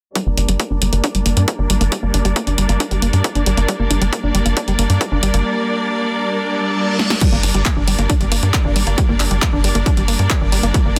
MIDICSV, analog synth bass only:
0, 0, Header, 1, 2, 480
1, 0, Start_track
1, 0, Key_signature, -2, "minor"
1, 0, Tempo, 441176
1, 169, Time_signature, 4, 2, 24, 8
1, 11957, End_track
2, 0, Start_track
2, 0, Title_t, "Analog synth bass"
2, 0, Program_c, 0, 38
2, 288, Note_on_c, 0, 31, 79
2, 385, Note_off_c, 0, 31, 0
2, 408, Note_on_c, 0, 31, 89
2, 505, Note_off_c, 0, 31, 0
2, 528, Note_on_c, 0, 31, 90
2, 625, Note_off_c, 0, 31, 0
2, 769, Note_on_c, 0, 31, 77
2, 866, Note_off_c, 0, 31, 0
2, 888, Note_on_c, 0, 31, 91
2, 985, Note_off_c, 0, 31, 0
2, 1009, Note_on_c, 0, 31, 90
2, 1106, Note_off_c, 0, 31, 0
2, 1248, Note_on_c, 0, 31, 81
2, 1345, Note_off_c, 0, 31, 0
2, 1368, Note_on_c, 0, 31, 98
2, 1465, Note_off_c, 0, 31, 0
2, 1488, Note_on_c, 0, 43, 87
2, 1585, Note_off_c, 0, 43, 0
2, 1729, Note_on_c, 0, 31, 87
2, 1826, Note_off_c, 0, 31, 0
2, 1848, Note_on_c, 0, 32, 94
2, 1945, Note_off_c, 0, 32, 0
2, 1968, Note_on_c, 0, 31, 90
2, 2065, Note_off_c, 0, 31, 0
2, 2208, Note_on_c, 0, 31, 79
2, 2305, Note_off_c, 0, 31, 0
2, 2329, Note_on_c, 0, 31, 94
2, 2426, Note_off_c, 0, 31, 0
2, 2448, Note_on_c, 0, 31, 91
2, 2545, Note_off_c, 0, 31, 0
2, 2688, Note_on_c, 0, 31, 83
2, 2785, Note_off_c, 0, 31, 0
2, 2809, Note_on_c, 0, 31, 91
2, 2906, Note_off_c, 0, 31, 0
2, 2928, Note_on_c, 0, 31, 92
2, 3025, Note_off_c, 0, 31, 0
2, 3169, Note_on_c, 0, 31, 83
2, 3266, Note_off_c, 0, 31, 0
2, 3288, Note_on_c, 0, 31, 95
2, 3385, Note_off_c, 0, 31, 0
2, 3408, Note_on_c, 0, 43, 88
2, 3505, Note_off_c, 0, 43, 0
2, 3649, Note_on_c, 0, 31, 90
2, 3746, Note_off_c, 0, 31, 0
2, 3768, Note_on_c, 0, 32, 90
2, 3865, Note_off_c, 0, 32, 0
2, 3888, Note_on_c, 0, 31, 86
2, 3985, Note_off_c, 0, 31, 0
2, 4129, Note_on_c, 0, 31, 82
2, 4226, Note_off_c, 0, 31, 0
2, 4249, Note_on_c, 0, 31, 95
2, 4346, Note_off_c, 0, 31, 0
2, 4369, Note_on_c, 0, 31, 89
2, 4466, Note_off_c, 0, 31, 0
2, 4609, Note_on_c, 0, 31, 83
2, 4705, Note_off_c, 0, 31, 0
2, 4728, Note_on_c, 0, 31, 97
2, 4825, Note_off_c, 0, 31, 0
2, 4849, Note_on_c, 0, 31, 90
2, 4946, Note_off_c, 0, 31, 0
2, 5089, Note_on_c, 0, 31, 83
2, 5186, Note_off_c, 0, 31, 0
2, 5208, Note_on_c, 0, 31, 94
2, 5305, Note_off_c, 0, 31, 0
2, 5328, Note_on_c, 0, 43, 89
2, 5425, Note_off_c, 0, 43, 0
2, 5568, Note_on_c, 0, 31, 90
2, 5665, Note_off_c, 0, 31, 0
2, 5689, Note_on_c, 0, 32, 92
2, 5785, Note_off_c, 0, 32, 0
2, 5808, Note_on_c, 0, 31, 87
2, 5905, Note_off_c, 0, 31, 0
2, 7968, Note_on_c, 0, 31, 83
2, 8065, Note_off_c, 0, 31, 0
2, 8088, Note_on_c, 0, 31, 90
2, 8185, Note_off_c, 0, 31, 0
2, 8209, Note_on_c, 0, 31, 87
2, 8306, Note_off_c, 0, 31, 0
2, 8449, Note_on_c, 0, 31, 82
2, 8546, Note_off_c, 0, 31, 0
2, 8569, Note_on_c, 0, 31, 94
2, 8666, Note_off_c, 0, 31, 0
2, 8689, Note_on_c, 0, 31, 93
2, 8786, Note_off_c, 0, 31, 0
2, 8929, Note_on_c, 0, 31, 88
2, 9026, Note_off_c, 0, 31, 0
2, 9049, Note_on_c, 0, 31, 97
2, 9146, Note_off_c, 0, 31, 0
2, 9169, Note_on_c, 0, 43, 86
2, 9266, Note_off_c, 0, 43, 0
2, 9408, Note_on_c, 0, 31, 91
2, 9505, Note_off_c, 0, 31, 0
2, 9529, Note_on_c, 0, 32, 90
2, 9626, Note_off_c, 0, 32, 0
2, 9649, Note_on_c, 0, 31, 87
2, 9746, Note_off_c, 0, 31, 0
2, 9888, Note_on_c, 0, 31, 88
2, 9985, Note_off_c, 0, 31, 0
2, 10008, Note_on_c, 0, 31, 94
2, 10105, Note_off_c, 0, 31, 0
2, 10128, Note_on_c, 0, 31, 93
2, 10225, Note_off_c, 0, 31, 0
2, 10368, Note_on_c, 0, 31, 83
2, 10465, Note_off_c, 0, 31, 0
2, 10488, Note_on_c, 0, 31, 90
2, 10585, Note_off_c, 0, 31, 0
2, 10608, Note_on_c, 0, 31, 92
2, 10705, Note_off_c, 0, 31, 0
2, 10848, Note_on_c, 0, 31, 86
2, 10946, Note_off_c, 0, 31, 0
2, 10968, Note_on_c, 0, 31, 102
2, 11066, Note_off_c, 0, 31, 0
2, 11088, Note_on_c, 0, 43, 92
2, 11185, Note_off_c, 0, 43, 0
2, 11329, Note_on_c, 0, 31, 89
2, 11426, Note_off_c, 0, 31, 0
2, 11448, Note_on_c, 0, 32, 95
2, 11545, Note_off_c, 0, 32, 0
2, 11569, Note_on_c, 0, 31, 94
2, 11666, Note_off_c, 0, 31, 0
2, 11808, Note_on_c, 0, 31, 82
2, 11905, Note_off_c, 0, 31, 0
2, 11957, End_track
0, 0, End_of_file